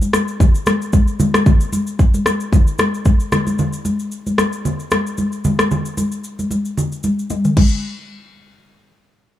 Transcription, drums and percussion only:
0.02 high conga, shaker
0.13 cross-stick, high conga, shaker
0.28 shaker
0.40 kick, low conga, shaker
0.55 shaker
0.66 cross-stick, high conga, shaker
0.82 shaker
0.93 kick, high conga, shaker
1.08 shaker
1.20 high conga, low conga, shaker
1.34 cross-stick, high conga, shaker
1.46 kick, low conga, shaker
1.61 shaker
1.73 high conga, shaker
1.87 shaker
1.99 kick, shaker
2.14 high conga, shaker
2.26 cross-stick, high conga, shaker
2.40 shaker
2.53 kick, low conga, shaker
2.67 shaker
2.79 cross-stick, high conga, shaker
2.94 shaker
3.05 kick, high conga, shaker
3.20 shaker
3.32 cross-stick, high conga, low conga, shaker
3.47 high conga, shaker
3.59 low conga, shaker
3.73 shaker
3.85 high conga, shaker
3.99 shaker
4.12 shaker
4.27 high conga, shaker
4.38 cross-stick, high conga, shaker
4.53 shaker
4.65 low conga, shaker
4.80 shaker
4.91 cross-stick, high conga, shaker
5.07 shaker
5.18 high conga, shaker
5.32 shaker
5.45 high conga, low conga, shaker
5.59 cross-stick, high conga, shaker
5.71 low conga, shaker
5.85 shaker
5.97 high conga, shaker
6.12 shaker
6.24 shaker
6.39 high conga, shaker
6.51 high conga, shaker
6.65 shaker
6.77 low conga, shaker
6.92 shaker
7.03 high conga, shaker
7.19 shaker
7.30 high tom, high conga, shaker
7.45 mid tom, shaker
7.57 kick, crash, high conga

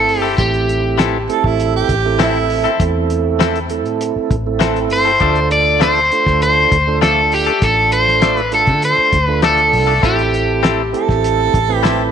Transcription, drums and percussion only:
0.09 open hi-hat
0.38 kick, closed hi-hat
0.54 closed hi-hat
0.69 closed hi-hat
0.99 snare, closed hi-hat
1.30 closed hi-hat
1.44 kick
1.60 closed hi-hat
1.89 kick, closed hi-hat
2.19 snare, closed hi-hat
2.50 open hi-hat
2.65 closed hi-hat
2.80 kick, closed hi-hat
3.10 closed hi-hat
3.40 snare, closed hi-hat
3.56 closed hi-hat
3.70 closed hi-hat
3.86 closed hi-hat
4.01 closed hi-hat
4.31 kick, closed hi-hat
4.60 snare, closed hi-hat
4.76 closed hi-hat
4.90 open hi-hat
5.20 kick, closed hi-hat
5.35 closed hi-hat
5.51 closed hi-hat
5.81 snare, closed hi-hat
6.12 closed hi-hat
6.27 kick, snare
6.42 closed hi-hat
6.72 kick, closed hi-hat
7.02 snare, closed hi-hat
7.32 open hi-hat
7.47 closed hi-hat
7.62 kick, closed hi-hat
7.92 closed hi-hat
8.08 snare
8.22 snare, closed hi-hat
8.37 closed hi-hat
8.52 closed hi-hat
8.67 kick, closed hi-hat
8.82 closed hi-hat
9.13 kick, closed hi-hat
9.42 snare, closed hi-hat
9.58 closed hi-hat
9.73 open hi-hat
10.03 kick, closed hi-hat
10.19 closed hi-hat
10.34 closed hi-hat
10.64 snare, closed hi-hat
10.94 closed hi-hat
11.09 kick, snare
11.24 closed hi-hat
11.54 kick, closed hi-hat
11.85 snare, closed hi-hat

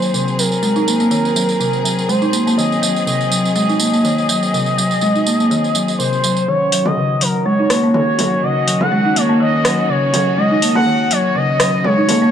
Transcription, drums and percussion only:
0.02 tambourine
0.14 tambourine
0.28 tambourine
0.39 tambourine
0.52 tambourine
0.63 tambourine
0.76 tambourine
0.88 tambourine
1.00 tambourine
1.11 tambourine
1.25 tambourine
1.36 tambourine
1.49 tambourine
1.60 tambourine
1.73 tambourine
1.85 tambourine
1.99 tambourine
2.09 tambourine
2.22 tambourine
2.33 tambourine
2.47 tambourine
2.59 tambourine
2.72 tambourine
2.83 tambourine
2.96 tambourine
3.07 tambourine
3.21 tambourine
3.32 tambourine
3.45 tambourine
3.56 tambourine
3.69 tambourine
3.80 tambourine
3.94 tambourine
4.05 tambourine
4.18 tambourine
4.29 tambourine
4.43 tambourine
4.54 tambourine
4.66 tambourine
4.78 tambourine
4.91 tambourine
5.01 tambourine
5.15 tambourine
5.27 tambourine
5.40 tambourine
5.51 tambourine
5.64 tambourine
5.75 tambourine
5.88 tambourine
6.00 tambourine
6.13 tambourine
6.24 tambourine
6.37 tambourine
6.72 open hi-hat
6.86 mid tom
7.21 open hi-hat
7.70 cross-stick, open hi-hat
7.94 mid tom
8.19 open hi-hat, mid tom
8.68 open hi-hat
8.81 mid tom
9.16 open hi-hat
9.65 cross-stick, open hi-hat
10.14 open hi-hat, mid tom
10.62 open hi-hat
10.76 mid tom
11.11 open hi-hat
11.60 cross-stick, open hi-hat
11.84 mid tom
12.09 open hi-hat, mid tom

